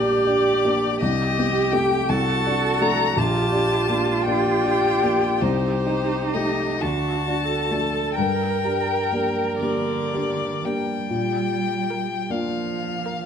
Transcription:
Already playing: A#1 A#3 D4 G4 D5
0.26 D4 G4
0.65 A#3 D4 G4
1.01 C2 G4 D#5
1.39 C4 G4
1.72 A3 C4 G4 G5
2.09 C2 F#4 A4 A5
2.46 D4 F#4
2.81 A3 D4 F#4 A#5
3.17 A#1 F4 G4 A5
3.52 D4 G4
3.89 A#3 D4 G4
4.25 A#3 D4 G4 G5
4.65 D4 G4
5.03 A#3 D4 G4
5.40 C2 D#4 G4 C5
5.86 D#4 G4
6.34 A3 D#4 G4 D#5
6.81 D2 D4 F#4 A5
7.28 D4 F#4
7.47 A4
7.71 A3 D4 F#4 A4
8.16 G2 A#4 G5
8.65 D4 G4
9.12 A#3 D4 G4
9.60 D3 A#3 D4 G4 D5
10.14 D4 G4
10.65 G3 A#3 D4 G4 G5
11.10 A#2
11.90 A#4
12.30 F3 A#3 D4 F4 F5
13.06 A#4

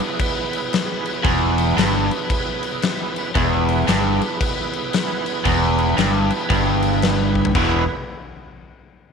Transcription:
Already playing: B3 E4 G#4 B4
0.20 kick, crash
0.53 crash
0.73 snare, crash
1.05 crash
1.23 E1 E2, kick, crash
1.58 crash
1.77 G1 G2, snare, crash
2.11 crash
2.30 kick, crash
2.63 crash
2.82 snare, crash
3.16 crash
3.35 E1 E2 B3 E4 G#4 B4, kick, crash
3.69 crash
3.88 G1 G2, snare, crash
4.21 crash
4.41 kick, crash
4.73 crash
4.93 snare, crash
5.26 crash
5.45 E1 E2, kick, crash
5.78 crash
5.98 G1 G2, snare, crash
6.30 crash
6.50 G1 G2, kick, crash
6.82 crash
7.02 snare, crash
7.35 kick
7.45 floor tom
7.54 E1 E2 B2 E3 B3 E4 G#4 B4, kick, crash

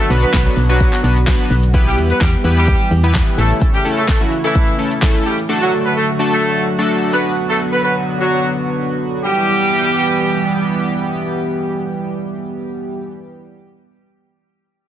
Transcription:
Already playing: D3 F#3 B3 F#4
0.10 B1 B3 D4 F#4 B4, open hi-hat, shaker
0.22 B3 B4, closed hi-hat, shaker
0.33 B1 B3 B4, kick, snare, clap, closed hi-hat, shaker
0.46 B3 D4 F#4 B4, closed hi-hat, shaker
0.57 B1, open hi-hat, shaker
0.69 F#3 B3 D4 F#4 B4, closed hi-hat, shaker
0.80 kick, closed hi-hat, shaker
0.93 clap, closed hi-hat, shaker
1.04 B1 B3 D4 F#4 B4, open hi-hat, shaker
1.17 closed hi-hat, shaker
1.27 B3 D4 F#4 B4, kick, snare, clap, closed hi-hat, shaker
1.40 closed hi-hat, shaker
1.50 B1, open hi-hat, shaker
1.63 closed hi-hat, shaker
1.74 E3 G3 B3 E4 G4 B4, kick, closed hi-hat, shaker
1.86 G3 G4, closed hi-hat, shaker
1.97 E2, open hi-hat, shaker
2.10 B3 B4, closed hi-hat, shaker
2.21 E2 G3 G4, kick, snare, clap, closed hi-hat, shaker
2.34 closed hi-hat, shaker
2.44 E2 B3 E4 G4 B4, open hi-hat, shaker
2.57 G3 G4, closed hi-hat, shaker
2.68 kick, closed hi-hat, shaker
2.80 closed hi-hat, shaker
2.91 E2, open hi-hat, shaker
3.03 B3 E4 G4 B4, closed hi-hat, shaker
3.14 kick, snare, clap, closed hi-hat, shaker
3.27 closed hi-hat, shaker
3.38 A1 C#3 A3 C#4 E4 A4, open hi-hat, shaker
3.51 closed hi-hat, shaker
3.61 kick, closed hi-hat, shaker
3.74 G3 G4, closed hi-hat, shaker
3.85 A3 C#4 E4 A4, open hi-hat, shaker
3.97 A3 A4, closed hi-hat, shaker
4.08 A3 A4, kick, snare, clap, closed hi-hat, shaker
4.21 A3 C#4 E4 F#4, closed hi-hat, shaker
4.32 open hi-hat, shaker
4.44 E3 A3 C#4 E4 A4, closed hi-hat, shaker
4.55 kick, closed hi-hat, shaker
4.68 closed hi-hat, shaker
4.78 A3 C#4 E4 A4, open hi-hat, shaker
4.91 closed hi-hat, shaker
5.02 A3 C#4 E4 A4, kick, snare, clap, closed hi-hat, shaker
5.15 closed hi-hat, shaker
5.26 G3 G4, open hi-hat, shaker
5.38 closed hi-hat, shaker
5.49 D3 F#3 A3 D4 F#4 A4
5.61 F#3 F#4
5.85 B3 B4
5.96 A3 A4
6.19 A3 D4 F#4 A4
6.32 A3 A4
6.78 A3 D4 F#4 A4
7.13 D3 B3 D4 F#4 B4
7.49 A3 A4
7.72 B3 B4
7.83 B3 B4
8.19 F#3 F#4
9.24 E3 G3 B3 G4

